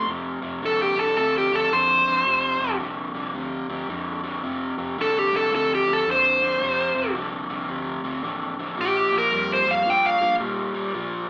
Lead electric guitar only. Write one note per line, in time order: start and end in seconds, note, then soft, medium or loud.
0.66 0.81 A4 medium
0.82 0.98 G4 medium
1.00 1.17 A4 medium
1.18 1.35 A4 medium
1.38 1.55 G4 medium
1.55 1.73 A4 medium
1.73 2.77 C5 medium
5.02 5.19 A4 medium
5.19 5.34 G4 medium
5.36 5.52 A4 medium
5.56 5.71 A4 medium
5.75 5.93 G4 medium
5.93 6.08 A4 medium
6.11 7.14 C5 medium
8.81 9.14 G4 medium
9.18 9.51 A#4 medium
9.53 9.69 C5 medium
9.71 9.87 F5 medium
9.90 10.06 G5 medium
10.06 10.34 F5 medium